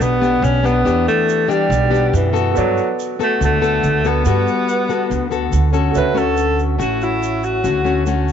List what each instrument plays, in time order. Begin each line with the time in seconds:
Already playing: nylon-string guitar B3 D4 G4, grand piano G4 B4 D5
0.00 upright bass B1, nylon-string guitar B2, alto saxophone B3, shaker
0.21 nylon-string guitar B3 D4 G4, shaker
0.42 upright bass B1, alto saxophone C#4, shaker
0.63 nylon-string guitar B3 D4 G4, alto saxophone B3, shaker
0.85 upright bass E2, nylon-string guitar E3 B3 D4 G4, shaker
1.08 alto saxophone A3, shaker
1.29 shaker
1.48 alto saxophone G3, nylon-string guitar B3 D4 G4, shaker
1.69 upright bass B1, nylon-string guitar B2, shaker
1.90 nylon-string guitar B3 D4 G4, shaker
2.13 upright bass F#2, alto saxophone E3, shaker
2.33 nylon-string guitar B3 F#4 A4, shaker
2.52 grand piano F#4 A4 B4
2.56 upright bass G2, alto saxophone F#3, grand piano D5, shaker
2.77 shaker
2.99 shaker
3.19 alto saxophone A3, nylon-string guitar B3 F#4 A4, shaker
3.40 upright bass D2, nylon-string guitar D3, shaker
3.45 alto saxophone A3
3.61 nylon-string guitar B3 F#4 A4, shaker
3.83 upright bass D2, shaker
4.04 nylon-string guitar B3 F#4 A4, alto saxophone B3, shaker
4.25 upright bass G2, nylon-string guitar G3 B3 F#4 A4, shaker
4.48 shaker
4.69 shaker
4.89 nylon-string guitar B3 F#4 A4, shaker
5.10 upright bass D2, nylon-string guitar D3, shaker
5.31 nylon-string guitar B3 F#4 A4, shaker
5.53 upright bass D2, shaker
5.73 nylon-string guitar C#4 F#4 A4, shaker
5.91 nylon-string guitar D3, grand piano F#4 A4
5.95 upright bass D2, alto saxophone B4, grand piano C#5 E5, shaker
6.14 nylon-string guitar A3 C#4 F#4, alto saxophone A4, shaker
6.37 shaker
6.59 shaker
6.78 upright bass A1, nylon-string guitar A2 A3 C#4 F#4, alto saxophone F#4, shaker
7.01 alto saxophone E4, shaker
7.23 shaker
7.43 alto saxophone F#4, shaker
7.64 upright bass D2, nylon-string guitar D3 A3 C#4 F#4, shaker
7.84 nylon-string guitar A3 C#4 F#4, shaker
8.06 nylon-string guitar A3 C#4 F#4, shaker
8.28 shaker